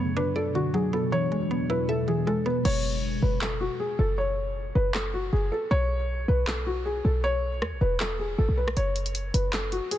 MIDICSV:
0, 0, Header, 1, 6, 480
1, 0, Start_track
1, 0, Key_signature, 3, "minor"
1, 0, Tempo, 382166
1, 1410, Time_signature, 4, 2, 24, 8
1, 12536, End_track
2, 0, Start_track
2, 0, Title_t, "Felt piano"
2, 0, Program_c, 0, 0
2, 0, Note_on_c, 0, 73, 103
2, 168, Note_off_c, 0, 73, 0
2, 210, Note_on_c, 0, 71, 85
2, 424, Note_off_c, 0, 71, 0
2, 450, Note_on_c, 0, 69, 74
2, 664, Note_off_c, 0, 69, 0
2, 690, Note_on_c, 0, 66, 82
2, 904, Note_off_c, 0, 66, 0
2, 931, Note_on_c, 0, 68, 75
2, 1145, Note_off_c, 0, 68, 0
2, 1169, Note_on_c, 0, 69, 76
2, 1384, Note_off_c, 0, 69, 0
2, 1410, Note_on_c, 0, 73, 101
2, 2087, Note_off_c, 0, 73, 0
2, 2131, Note_on_c, 0, 71, 88
2, 2345, Note_off_c, 0, 71, 0
2, 2371, Note_on_c, 0, 69, 82
2, 2585, Note_off_c, 0, 69, 0
2, 2609, Note_on_c, 0, 68, 73
2, 2824, Note_off_c, 0, 68, 0
2, 2849, Note_on_c, 0, 69, 77
2, 3064, Note_off_c, 0, 69, 0
2, 3087, Note_on_c, 0, 71, 81
2, 3303, Note_off_c, 0, 71, 0
2, 3328, Note_on_c, 0, 73, 99
2, 4006, Note_off_c, 0, 73, 0
2, 4050, Note_on_c, 0, 71, 78
2, 4265, Note_off_c, 0, 71, 0
2, 4289, Note_on_c, 0, 69, 79
2, 4504, Note_off_c, 0, 69, 0
2, 4529, Note_on_c, 0, 66, 78
2, 4744, Note_off_c, 0, 66, 0
2, 4769, Note_on_c, 0, 68, 78
2, 4984, Note_off_c, 0, 68, 0
2, 5010, Note_on_c, 0, 69, 88
2, 5225, Note_off_c, 0, 69, 0
2, 5249, Note_on_c, 0, 73, 89
2, 5927, Note_off_c, 0, 73, 0
2, 5970, Note_on_c, 0, 71, 84
2, 6185, Note_off_c, 0, 71, 0
2, 6210, Note_on_c, 0, 69, 85
2, 6425, Note_off_c, 0, 69, 0
2, 6449, Note_on_c, 0, 66, 77
2, 6664, Note_off_c, 0, 66, 0
2, 6690, Note_on_c, 0, 68, 78
2, 6904, Note_off_c, 0, 68, 0
2, 6931, Note_on_c, 0, 69, 81
2, 7145, Note_off_c, 0, 69, 0
2, 7171, Note_on_c, 0, 73, 110
2, 7847, Note_off_c, 0, 73, 0
2, 7890, Note_on_c, 0, 71, 87
2, 8105, Note_off_c, 0, 71, 0
2, 8130, Note_on_c, 0, 69, 79
2, 8345, Note_off_c, 0, 69, 0
2, 8371, Note_on_c, 0, 66, 80
2, 8585, Note_off_c, 0, 66, 0
2, 8610, Note_on_c, 0, 68, 83
2, 8825, Note_off_c, 0, 68, 0
2, 8851, Note_on_c, 0, 69, 77
2, 9065, Note_off_c, 0, 69, 0
2, 9091, Note_on_c, 0, 73, 105
2, 9767, Note_off_c, 0, 73, 0
2, 9810, Note_on_c, 0, 71, 86
2, 10025, Note_off_c, 0, 71, 0
2, 10051, Note_on_c, 0, 69, 88
2, 10265, Note_off_c, 0, 69, 0
2, 10290, Note_on_c, 0, 68, 73
2, 10505, Note_off_c, 0, 68, 0
2, 10531, Note_on_c, 0, 69, 79
2, 10745, Note_off_c, 0, 69, 0
2, 10770, Note_on_c, 0, 71, 80
2, 10984, Note_off_c, 0, 71, 0
2, 11012, Note_on_c, 0, 73, 98
2, 11688, Note_off_c, 0, 73, 0
2, 11731, Note_on_c, 0, 71, 78
2, 11945, Note_off_c, 0, 71, 0
2, 11971, Note_on_c, 0, 69, 78
2, 12185, Note_off_c, 0, 69, 0
2, 12211, Note_on_c, 0, 66, 79
2, 12425, Note_off_c, 0, 66, 0
2, 12450, Note_on_c, 0, 68, 80
2, 12536, Note_off_c, 0, 68, 0
2, 12536, End_track
3, 0, Start_track
3, 0, Title_t, "Synth pluck"
3, 0, Program_c, 1, 84
3, 0, Note_on_c, 1, 50, 81
3, 0, Note_on_c, 1, 54, 75
3, 0, Note_on_c, 1, 59, 76
3, 208, Note_on_c, 1, 62, 104
3, 449, Note_on_c, 1, 74, 84
3, 677, Note_off_c, 1, 50, 0
3, 692, Note_on_c, 1, 50, 77
3, 914, Note_off_c, 1, 54, 0
3, 929, Note_on_c, 1, 54, 92
3, 1155, Note_off_c, 1, 59, 0
3, 1170, Note_on_c, 1, 59, 78
3, 1409, Note_off_c, 1, 62, 0
3, 1409, Note_off_c, 1, 74, 0
3, 1410, Note_off_c, 1, 54, 0
3, 1410, Note_off_c, 1, 59, 0
3, 1411, Note_off_c, 1, 50, 0
3, 1412, Note_on_c, 1, 52, 80
3, 1654, Note_on_c, 1, 56, 70
3, 1895, Note_on_c, 1, 59, 88
3, 2132, Note_on_c, 1, 64, 92
3, 2371, Note_on_c, 1, 76, 85
3, 2596, Note_off_c, 1, 52, 0
3, 2611, Note_on_c, 1, 52, 71
3, 2839, Note_off_c, 1, 56, 0
3, 2854, Note_on_c, 1, 56, 93
3, 3073, Note_off_c, 1, 59, 0
3, 3088, Note_on_c, 1, 59, 83
3, 3329, Note_off_c, 1, 59, 0
3, 3331, Note_off_c, 1, 52, 0
3, 3331, Note_off_c, 1, 64, 0
3, 3331, Note_off_c, 1, 76, 0
3, 3332, Note_off_c, 1, 56, 0
3, 12536, End_track
4, 0, Start_track
4, 0, Title_t, "Ambient pad"
4, 0, Program_c, 2, 92
4, 0, Note_on_c, 2, 47, 77
4, 0, Note_on_c, 2, 54, 74
4, 0, Note_on_c, 2, 62, 90
4, 1391, Note_off_c, 2, 54, 0
4, 1391, Note_off_c, 2, 62, 0
4, 1410, Note_on_c, 2, 40, 78
4, 1411, Note_on_c, 2, 56, 87
4, 3292, Note_off_c, 2, 47, 0
4, 3311, Note_off_c, 2, 40, 0
4, 3311, Note_off_c, 2, 56, 0
4, 12536, End_track
5, 0, Start_track
5, 0, Title_t, "808-style bass"
5, 0, Program_c, 3, 38
5, 3330, Note_on_c, 3, 30, 112
5, 4022, Note_off_c, 3, 30, 0
5, 4050, Note_on_c, 3, 30, 106
5, 4633, Note_off_c, 3, 30, 0
5, 5009, Note_on_c, 3, 30, 110
5, 5932, Note_off_c, 3, 30, 0
5, 5970, Note_on_c, 3, 30, 102
5, 6661, Note_off_c, 3, 30, 0
5, 6690, Note_on_c, 3, 30, 107
5, 6921, Note_off_c, 3, 30, 0
5, 7170, Note_on_c, 3, 35, 110
5, 7862, Note_off_c, 3, 35, 0
5, 7891, Note_on_c, 3, 35, 102
5, 8812, Note_off_c, 3, 35, 0
5, 8851, Note_on_c, 3, 35, 107
5, 9570, Note_on_c, 3, 40, 95
5, 9589, Note_off_c, 3, 35, 0
5, 9698, Note_on_c, 3, 35, 102
5, 9717, Note_off_c, 3, 40, 0
5, 9805, Note_off_c, 3, 35, 0
5, 9811, Note_on_c, 3, 28, 101
5, 10502, Note_off_c, 3, 28, 0
5, 10530, Note_on_c, 3, 32, 110
5, 10653, Note_off_c, 3, 32, 0
5, 10658, Note_on_c, 3, 35, 101
5, 10996, Note_off_c, 3, 35, 0
5, 11011, Note_on_c, 3, 30, 111
5, 11702, Note_off_c, 3, 30, 0
5, 11731, Note_on_c, 3, 30, 100
5, 12314, Note_off_c, 3, 30, 0
5, 12536, End_track
6, 0, Start_track
6, 0, Title_t, "Drums"
6, 3330, Note_on_c, 9, 49, 94
6, 3455, Note_off_c, 9, 49, 0
6, 4288, Note_on_c, 9, 39, 99
6, 4414, Note_off_c, 9, 39, 0
6, 6209, Note_on_c, 9, 39, 105
6, 6335, Note_off_c, 9, 39, 0
6, 8129, Note_on_c, 9, 39, 103
6, 8255, Note_off_c, 9, 39, 0
6, 9570, Note_on_c, 9, 37, 67
6, 9696, Note_off_c, 9, 37, 0
6, 10049, Note_on_c, 9, 39, 101
6, 10175, Note_off_c, 9, 39, 0
6, 10897, Note_on_c, 9, 37, 101
6, 11010, Note_on_c, 9, 42, 72
6, 11023, Note_off_c, 9, 37, 0
6, 11136, Note_off_c, 9, 42, 0
6, 11250, Note_on_c, 9, 42, 84
6, 11375, Note_off_c, 9, 42, 0
6, 11377, Note_on_c, 9, 42, 50
6, 11490, Note_off_c, 9, 42, 0
6, 11490, Note_on_c, 9, 42, 78
6, 11616, Note_off_c, 9, 42, 0
6, 11733, Note_on_c, 9, 42, 78
6, 11859, Note_off_c, 9, 42, 0
6, 11969, Note_on_c, 9, 39, 104
6, 11972, Note_on_c, 9, 42, 83
6, 12095, Note_off_c, 9, 39, 0
6, 12097, Note_off_c, 9, 42, 0
6, 12209, Note_on_c, 9, 42, 62
6, 12335, Note_off_c, 9, 42, 0
6, 12451, Note_on_c, 9, 42, 67
6, 12536, Note_off_c, 9, 42, 0
6, 12536, End_track
0, 0, End_of_file